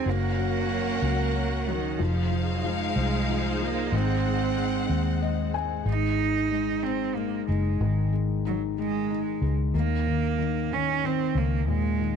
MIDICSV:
0, 0, Header, 1, 5, 480
1, 0, Start_track
1, 0, Tempo, 645161
1, 45, Time_signature, 6, 3, 24, 8
1, 9047, End_track
2, 0, Start_track
2, 0, Title_t, "String section"
2, 0, Program_c, 0, 48
2, 52, Note_on_c, 0, 70, 68
2, 53, Note_on_c, 0, 61, 70
2, 55, Note_on_c, 0, 78, 78
2, 57, Note_on_c, 0, 66, 63
2, 1475, Note_off_c, 0, 70, 0
2, 1476, Note_off_c, 0, 61, 0
2, 1476, Note_off_c, 0, 78, 0
2, 1478, Note_off_c, 0, 66, 0
2, 1482, Note_on_c, 0, 72, 65
2, 1484, Note_on_c, 0, 63, 69
2, 1486, Note_on_c, 0, 68, 63
2, 1487, Note_on_c, 0, 77, 85
2, 2911, Note_on_c, 0, 78, 81
2, 2913, Note_off_c, 0, 77, 0
2, 4337, Note_off_c, 0, 72, 0
2, 4338, Note_off_c, 0, 63, 0
2, 4339, Note_off_c, 0, 68, 0
2, 4345, Note_off_c, 0, 78, 0
2, 9047, End_track
3, 0, Start_track
3, 0, Title_t, "Cello"
3, 0, Program_c, 1, 42
3, 0, Note_on_c, 1, 60, 87
3, 68, Note_on_c, 1, 58, 92
3, 79, Note_off_c, 1, 60, 0
3, 1264, Note_on_c, 1, 51, 79
3, 1276, Note_off_c, 1, 58, 0
3, 1502, Note_on_c, 1, 53, 85
3, 1514, Note_off_c, 1, 51, 0
3, 1854, Note_off_c, 1, 53, 0
3, 1858, Note_on_c, 1, 54, 76
3, 1982, Note_on_c, 1, 56, 84
3, 1993, Note_off_c, 1, 54, 0
3, 2694, Note_off_c, 1, 56, 0
3, 2698, Note_on_c, 1, 58, 86
3, 2943, Note_on_c, 1, 60, 90
3, 2954, Note_off_c, 1, 58, 0
3, 4136, Note_off_c, 1, 60, 0
3, 4382, Note_on_c, 1, 63, 101
3, 5078, Note_on_c, 1, 60, 94
3, 5089, Note_off_c, 1, 63, 0
3, 5318, Note_on_c, 1, 58, 82
3, 5329, Note_off_c, 1, 60, 0
3, 5554, Note_off_c, 1, 58, 0
3, 5558, Note_on_c, 1, 56, 76
3, 6013, Note_off_c, 1, 56, 0
3, 6300, Note_on_c, 1, 54, 78
3, 6405, Note_off_c, 1, 54, 0
3, 6546, Note_on_c, 1, 56, 97
3, 7047, Note_off_c, 1, 56, 0
3, 7264, Note_on_c, 1, 58, 101
3, 7983, Note_on_c, 1, 61, 102
3, 7994, Note_off_c, 1, 58, 0
3, 8223, Note_on_c, 1, 60, 96
3, 8234, Note_off_c, 1, 61, 0
3, 8464, Note_on_c, 1, 58, 89
3, 8475, Note_off_c, 1, 60, 0
3, 8694, Note_off_c, 1, 58, 0
3, 8699, Note_on_c, 1, 56, 95
3, 9047, Note_off_c, 1, 56, 0
3, 9047, End_track
4, 0, Start_track
4, 0, Title_t, "Felt piano"
4, 0, Program_c, 2, 0
4, 0, Control_c, 2, 64, 127
4, 41, Note_on_c, 2, 54, 57
4, 55, Control_c, 2, 64, 0
4, 199, Control_c, 2, 64, 127
4, 272, Note_off_c, 2, 54, 0
4, 283, Note_on_c, 2, 54, 49
4, 502, Note_off_c, 2, 54, 0
4, 514, Note_on_c, 2, 54, 53
4, 753, Note_off_c, 2, 54, 0
4, 764, Note_on_c, 2, 54, 57
4, 981, Note_off_c, 2, 54, 0
4, 993, Note_on_c, 2, 54, 49
4, 1230, Note_off_c, 2, 54, 0
4, 1241, Note_on_c, 2, 54, 53
4, 1476, Note_off_c, 2, 54, 0
4, 1478, Note_on_c, 2, 53, 58
4, 1497, Control_c, 2, 64, 0
4, 1619, Control_c, 2, 64, 127
4, 1712, Note_off_c, 2, 53, 0
4, 1723, Note_on_c, 2, 53, 49
4, 1953, Note_off_c, 2, 53, 0
4, 1964, Note_on_c, 2, 53, 58
4, 2193, Note_off_c, 2, 53, 0
4, 2204, Note_on_c, 2, 53, 55
4, 2441, Note_off_c, 2, 53, 0
4, 2452, Note_on_c, 2, 53, 51
4, 2682, Note_off_c, 2, 53, 0
4, 2693, Note_on_c, 2, 53, 54
4, 2923, Note_off_c, 2, 53, 0
4, 2934, Note_on_c, 2, 56, 62
4, 2936, Control_c, 2, 64, 0
4, 3067, Control_c, 2, 64, 127
4, 3156, Note_off_c, 2, 56, 0
4, 3167, Note_on_c, 2, 56, 49
4, 3394, Note_off_c, 2, 56, 0
4, 3405, Note_on_c, 2, 56, 57
4, 3634, Note_off_c, 2, 56, 0
4, 3645, Note_on_c, 2, 56, 55
4, 3874, Note_off_c, 2, 56, 0
4, 3885, Note_on_c, 2, 56, 46
4, 3885, Note_on_c, 2, 75, 61
4, 4109, Note_off_c, 2, 56, 0
4, 4109, Note_off_c, 2, 75, 0
4, 4121, Note_on_c, 2, 56, 55
4, 4123, Note_on_c, 2, 80, 62
4, 4348, Note_off_c, 2, 56, 0
4, 4348, Note_off_c, 2, 80, 0
4, 4359, Note_on_c, 2, 56, 64
4, 4379, Control_c, 2, 64, 0
4, 4488, Control_c, 2, 64, 127
4, 4602, Note_on_c, 2, 63, 53
4, 4836, Note_off_c, 2, 56, 0
4, 4847, Note_on_c, 2, 56, 59
4, 5072, Note_off_c, 2, 63, 0
4, 5083, Note_on_c, 2, 63, 55
4, 5313, Note_off_c, 2, 56, 0
4, 5324, Note_on_c, 2, 56, 47
4, 5558, Note_off_c, 2, 63, 0
4, 5570, Note_on_c, 2, 63, 49
4, 5809, Note_on_c, 2, 51, 63
4, 6035, Note_off_c, 2, 56, 0
4, 6046, Note_on_c, 2, 56, 54
4, 6277, Note_off_c, 2, 63, 0
4, 6288, Note_on_c, 2, 63, 60
4, 6521, Note_off_c, 2, 56, 0
4, 6532, Note_on_c, 2, 56, 58
4, 6761, Note_off_c, 2, 63, 0
4, 6772, Note_on_c, 2, 63, 54
4, 7000, Note_off_c, 2, 56, 0
4, 7011, Note_on_c, 2, 56, 49
4, 7219, Note_off_c, 2, 51, 0
4, 7236, Note_off_c, 2, 63, 0
4, 7242, Note_off_c, 2, 56, 0
4, 7252, Note_on_c, 2, 51, 65
4, 7256, Control_c, 2, 64, 0
4, 7388, Control_c, 2, 64, 127
4, 7479, Note_off_c, 2, 51, 0
4, 7490, Note_on_c, 2, 51, 57
4, 7715, Note_off_c, 2, 51, 0
4, 7726, Note_on_c, 2, 51, 60
4, 7959, Note_off_c, 2, 51, 0
4, 7970, Note_on_c, 2, 51, 56
4, 8199, Note_off_c, 2, 51, 0
4, 8210, Note_on_c, 2, 51, 52
4, 8440, Note_off_c, 2, 51, 0
4, 8451, Note_on_c, 2, 51, 53
4, 8690, Note_on_c, 2, 46, 63
4, 8910, Note_off_c, 2, 51, 0
4, 8921, Note_on_c, 2, 51, 52
4, 9047, Note_off_c, 2, 46, 0
4, 9047, Note_off_c, 2, 51, 0
4, 9047, End_track
5, 0, Start_track
5, 0, Title_t, "Fingered electric bass"
5, 0, Program_c, 3, 33
5, 43, Note_on_c, 3, 30, 84
5, 735, Note_off_c, 3, 30, 0
5, 760, Note_on_c, 3, 37, 79
5, 1454, Note_off_c, 3, 37, 0
5, 1485, Note_on_c, 3, 29, 87
5, 2176, Note_off_c, 3, 29, 0
5, 2201, Note_on_c, 3, 36, 88
5, 2894, Note_off_c, 3, 36, 0
5, 2917, Note_on_c, 3, 32, 95
5, 3613, Note_off_c, 3, 32, 0
5, 3641, Note_on_c, 3, 39, 94
5, 4335, Note_off_c, 3, 39, 0
5, 4355, Note_on_c, 3, 32, 88
5, 5532, Note_off_c, 3, 32, 0
5, 5569, Note_on_c, 3, 30, 84
5, 5794, Note_off_c, 3, 30, 0
5, 5806, Note_on_c, 3, 32, 91
5, 6977, Note_off_c, 3, 32, 0
5, 7006, Note_on_c, 3, 37, 76
5, 7232, Note_off_c, 3, 37, 0
5, 7246, Note_on_c, 3, 39, 103
5, 8417, Note_off_c, 3, 39, 0
5, 8445, Note_on_c, 3, 37, 83
5, 8683, Note_off_c, 3, 37, 0
5, 8683, Note_on_c, 3, 39, 96
5, 9047, Note_off_c, 3, 39, 0
5, 9047, End_track
0, 0, End_of_file